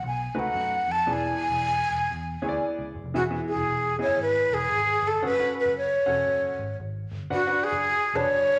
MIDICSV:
0, 0, Header, 1, 4, 480
1, 0, Start_track
1, 0, Tempo, 519931
1, 989, Time_signature, 4, 2, 24, 8
1, 7932, End_track
2, 0, Start_track
2, 0, Title_t, "Flute"
2, 0, Program_c, 0, 73
2, 69, Note_on_c, 0, 80, 85
2, 362, Note_on_c, 0, 78, 95
2, 376, Note_off_c, 0, 80, 0
2, 845, Note_on_c, 0, 81, 93
2, 859, Note_off_c, 0, 78, 0
2, 1045, Note_on_c, 0, 80, 109
2, 1058, Note_off_c, 0, 81, 0
2, 2457, Note_off_c, 0, 80, 0
2, 2915, Note_on_c, 0, 66, 91
2, 2981, Note_off_c, 0, 66, 0
2, 3217, Note_on_c, 0, 68, 95
2, 3657, Note_off_c, 0, 68, 0
2, 3712, Note_on_c, 0, 73, 97
2, 3871, Note_off_c, 0, 73, 0
2, 3898, Note_on_c, 0, 71, 100
2, 4190, Note_on_c, 0, 68, 98
2, 4203, Note_off_c, 0, 71, 0
2, 4685, Note_on_c, 0, 69, 84
2, 4699, Note_off_c, 0, 68, 0
2, 4849, Note_off_c, 0, 69, 0
2, 4854, Note_on_c, 0, 71, 99
2, 5117, Note_off_c, 0, 71, 0
2, 5166, Note_on_c, 0, 71, 93
2, 5318, Note_off_c, 0, 71, 0
2, 5334, Note_on_c, 0, 73, 95
2, 6244, Note_off_c, 0, 73, 0
2, 6767, Note_on_c, 0, 66, 92
2, 7051, Note_on_c, 0, 68, 108
2, 7065, Note_off_c, 0, 66, 0
2, 7533, Note_on_c, 0, 73, 110
2, 7547, Note_off_c, 0, 68, 0
2, 7932, Note_off_c, 0, 73, 0
2, 7932, End_track
3, 0, Start_track
3, 0, Title_t, "Grand piano"
3, 0, Program_c, 1, 0
3, 318, Note_on_c, 1, 57, 64
3, 320, Note_on_c, 1, 66, 65
3, 321, Note_on_c, 1, 63, 67
3, 321, Note_on_c, 1, 71, 77
3, 673, Note_off_c, 1, 57, 0
3, 674, Note_off_c, 1, 66, 0
3, 674, Note_off_c, 1, 71, 0
3, 675, Note_off_c, 1, 63, 0
3, 983, Note_on_c, 1, 59, 70
3, 987, Note_on_c, 1, 68, 65
3, 987, Note_on_c, 1, 74, 69
3, 990, Note_on_c, 1, 52, 55
3, 991, Note_on_c, 1, 64, 62
3, 1492, Note_off_c, 1, 59, 0
3, 1494, Note_off_c, 1, 68, 0
3, 1494, Note_off_c, 1, 74, 0
3, 1496, Note_off_c, 1, 64, 0
3, 1728, Note_off_c, 1, 52, 0
3, 2233, Note_on_c, 1, 59, 72
3, 2235, Note_on_c, 1, 73, 71
3, 2237, Note_on_c, 1, 64, 69
3, 2238, Note_on_c, 1, 68, 72
3, 2284, Note_off_c, 1, 73, 0
3, 2296, Note_on_c, 1, 74, 94
3, 2591, Note_off_c, 1, 59, 0
3, 2593, Note_off_c, 1, 64, 0
3, 2593, Note_off_c, 1, 68, 0
3, 2622, Note_off_c, 1, 74, 0
3, 2899, Note_on_c, 1, 52, 60
3, 2900, Note_on_c, 1, 59, 68
3, 2903, Note_on_c, 1, 68, 67
3, 2904, Note_on_c, 1, 64, 65
3, 2904, Note_on_c, 1, 76, 66
3, 2981, Note_off_c, 1, 59, 0
3, 2983, Note_off_c, 1, 68, 0
3, 2984, Note_off_c, 1, 64, 0
3, 2984, Note_off_c, 1, 76, 0
3, 3050, Note_on_c, 1, 64, 63
3, 3052, Note_on_c, 1, 59, 70
3, 3052, Note_on_c, 1, 68, 59
3, 3056, Note_on_c, 1, 76, 69
3, 3350, Note_off_c, 1, 64, 0
3, 3351, Note_off_c, 1, 59, 0
3, 3351, Note_off_c, 1, 68, 0
3, 3353, Note_off_c, 1, 76, 0
3, 3643, Note_off_c, 1, 52, 0
3, 3681, Note_on_c, 1, 59, 63
3, 3682, Note_on_c, 1, 64, 59
3, 3684, Note_on_c, 1, 68, 64
3, 3686, Note_on_c, 1, 75, 59
3, 3729, Note_off_c, 1, 75, 0
3, 3744, Note_on_c, 1, 76, 72
3, 4179, Note_off_c, 1, 59, 0
3, 4179, Note_off_c, 1, 64, 0
3, 4180, Note_off_c, 1, 68, 0
3, 4211, Note_off_c, 1, 76, 0
3, 4822, Note_on_c, 1, 61, 69
3, 4824, Note_on_c, 1, 69, 59
3, 4825, Note_on_c, 1, 66, 64
3, 4825, Note_on_c, 1, 78, 77
3, 4902, Note_off_c, 1, 61, 0
3, 4903, Note_off_c, 1, 69, 0
3, 4904, Note_off_c, 1, 66, 0
3, 4904, Note_off_c, 1, 78, 0
3, 4976, Note_on_c, 1, 66, 62
3, 4980, Note_on_c, 1, 61, 76
3, 4982, Note_on_c, 1, 69, 65
3, 4982, Note_on_c, 1, 78, 78
3, 5272, Note_off_c, 1, 66, 0
3, 5275, Note_off_c, 1, 61, 0
3, 5275, Note_off_c, 1, 78, 0
3, 5276, Note_off_c, 1, 69, 0
3, 5595, Note_on_c, 1, 66, 61
3, 5595, Note_on_c, 1, 78, 76
3, 5598, Note_on_c, 1, 61, 74
3, 5599, Note_on_c, 1, 69, 61
3, 6096, Note_off_c, 1, 66, 0
3, 6096, Note_off_c, 1, 78, 0
3, 6097, Note_off_c, 1, 61, 0
3, 6098, Note_off_c, 1, 69, 0
3, 6741, Note_on_c, 1, 66, 68
3, 6742, Note_on_c, 1, 71, 69
3, 6744, Note_on_c, 1, 62, 70
3, 6745, Note_on_c, 1, 78, 85
3, 6821, Note_off_c, 1, 66, 0
3, 6822, Note_off_c, 1, 71, 0
3, 6823, Note_off_c, 1, 62, 0
3, 6823, Note_off_c, 1, 78, 0
3, 6893, Note_on_c, 1, 71, 70
3, 6896, Note_on_c, 1, 78, 81
3, 6897, Note_on_c, 1, 62, 75
3, 6897, Note_on_c, 1, 66, 67
3, 7190, Note_off_c, 1, 71, 0
3, 7192, Note_off_c, 1, 62, 0
3, 7192, Note_off_c, 1, 66, 0
3, 7192, Note_off_c, 1, 78, 0
3, 7525, Note_on_c, 1, 62, 76
3, 7528, Note_on_c, 1, 81, 71
3, 7529, Note_on_c, 1, 71, 65
3, 7531, Note_on_c, 1, 66, 61
3, 7932, Note_off_c, 1, 62, 0
3, 7932, Note_off_c, 1, 66, 0
3, 7932, Note_off_c, 1, 71, 0
3, 7932, Note_off_c, 1, 81, 0
3, 7932, End_track
4, 0, Start_track
4, 0, Title_t, "Picked electric bass"
4, 0, Program_c, 2, 34
4, 28, Note_on_c, 2, 35, 91
4, 251, Note_off_c, 2, 35, 0
4, 333, Note_on_c, 2, 37, 86
4, 468, Note_off_c, 2, 37, 0
4, 501, Note_on_c, 2, 42, 86
4, 727, Note_off_c, 2, 42, 0
4, 810, Note_on_c, 2, 41, 83
4, 986, Note_on_c, 2, 28, 98
4, 999, Note_off_c, 2, 41, 0
4, 1209, Note_off_c, 2, 28, 0
4, 1379, Note_on_c, 2, 28, 98
4, 1670, Note_off_c, 2, 28, 0
4, 1760, Note_on_c, 2, 28, 86
4, 1900, Note_off_c, 2, 28, 0
4, 1949, Note_on_c, 2, 40, 96
4, 2171, Note_off_c, 2, 40, 0
4, 2240, Note_on_c, 2, 38, 85
4, 2381, Note_off_c, 2, 38, 0
4, 2572, Note_on_c, 2, 37, 75
4, 2685, Note_off_c, 2, 37, 0
4, 2719, Note_on_c, 2, 30, 86
4, 2791, Note_off_c, 2, 30, 0
4, 2806, Note_on_c, 2, 29, 81
4, 2879, Note_off_c, 2, 29, 0
4, 2904, Note_on_c, 2, 28, 117
4, 3128, Note_off_c, 2, 28, 0
4, 3286, Note_on_c, 2, 28, 95
4, 3359, Note_off_c, 2, 28, 0
4, 3369, Note_on_c, 2, 28, 83
4, 3669, Note_off_c, 2, 28, 0
4, 3765, Note_on_c, 2, 30, 89
4, 3839, Note_off_c, 2, 30, 0
4, 3855, Note_on_c, 2, 32, 97
4, 4083, Note_off_c, 2, 32, 0
4, 4160, Note_on_c, 2, 28, 89
4, 4300, Note_off_c, 2, 28, 0
4, 4343, Note_on_c, 2, 32, 91
4, 4568, Note_off_c, 2, 32, 0
4, 4638, Note_on_c, 2, 31, 94
4, 4779, Note_off_c, 2, 31, 0
4, 4818, Note_on_c, 2, 30, 107
4, 5044, Note_off_c, 2, 30, 0
4, 5221, Note_on_c, 2, 30, 100
4, 5511, Note_off_c, 2, 30, 0
4, 5608, Note_on_c, 2, 28, 85
4, 5745, Note_off_c, 2, 28, 0
4, 5785, Note_on_c, 2, 30, 97
4, 6008, Note_off_c, 2, 30, 0
4, 6085, Note_on_c, 2, 32, 88
4, 6223, Note_off_c, 2, 32, 0
4, 6275, Note_on_c, 2, 32, 91
4, 6495, Note_off_c, 2, 32, 0
4, 6568, Note_on_c, 2, 31, 86
4, 6705, Note_off_c, 2, 31, 0
4, 6744, Note_on_c, 2, 30, 103
4, 6968, Note_off_c, 2, 30, 0
4, 7130, Note_on_c, 2, 30, 104
4, 7312, Note_off_c, 2, 30, 0
4, 7510, Note_on_c, 2, 28, 91
4, 7584, Note_off_c, 2, 28, 0
4, 7600, Note_on_c, 2, 30, 82
4, 7675, Note_off_c, 2, 30, 0
4, 7700, Note_on_c, 2, 30, 101
4, 7925, Note_off_c, 2, 30, 0
4, 7932, End_track
0, 0, End_of_file